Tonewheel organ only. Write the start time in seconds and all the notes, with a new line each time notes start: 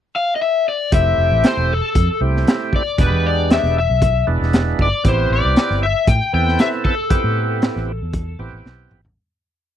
0.92 A3 C4 E4 G4
2.21 A3 C4 E4 G4
2.98 G#3 B3 D4 G4
4.27 G#3 B3 D4 E4
5.04 B3 C4 E4 G4
6.33 B3 C4 E4 A4
7.10 B3 C4 E4 G4
8.39 B3 C4 E4 G4